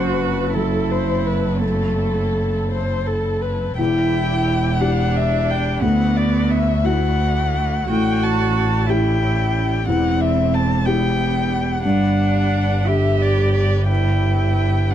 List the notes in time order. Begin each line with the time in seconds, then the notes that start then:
Already playing: F#1 F#2 C4 E4 F#4 A4 C5
0.20 B4
0.54 F#3 E4 A4
0.91 C5
1.26 B4
1.62 A3 A4
2.72 C5
3.07 A4
3.42 B4
3.78 E1 E2 D4 E4 G4 G5
4.80 D4 E4 G4 F#5
5.16 E5
5.50 G5
5.82 D2 B3 F#4 F#5
6.16 D5
6.50 E5
6.83 A3 E4 F#4 F#5
7.89 A1 A2 G3 C#4 F#4 G5
8.23 A5
8.56 A5
8.87 E4 G4 G5
9.87 E1 E2 C4 D4 E4 F#5
10.20 E5
10.54 A5
10.86 B3 E4 G4 G5
11.83 G1 G2 D4 G4 B4 F#5
12.87 D3 G4 E5
13.21 D5
13.54 D5
13.89 E4 G5
14.91 D4 F#5